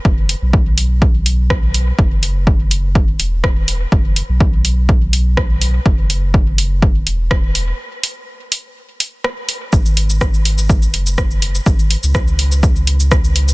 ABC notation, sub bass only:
X:1
M:4/4
L:1/16
Q:1/4=124
K:Elyd
V:1 name="Sub bass" clef=bass
F,,,2 z B,,,12 z | F,,,8- F,,, z E,,,4- E,,, z | F,,,2 z B,,,12 z | F,,,8- F,,, z E,,,4- E,,, z |
z16 | G,,,8- G,,, z F,,,4- F,,, z | G,,,2 z C,,12 z |]